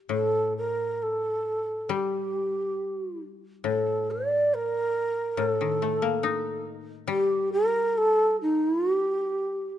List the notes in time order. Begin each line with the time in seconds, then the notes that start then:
0.09 A2 A4
0.57 A#4
1.02 A4
1.89 G3 G4
3.64 A2 A4
4.10 D5
4.54 A#4
5.37 A2 A4
5.61 D#3
5.82 A3
6.02 A#3
6.23 D#4
7.08 G3 G4
7.52 A#4
7.97 A4
8.41 D#4
8.95 G4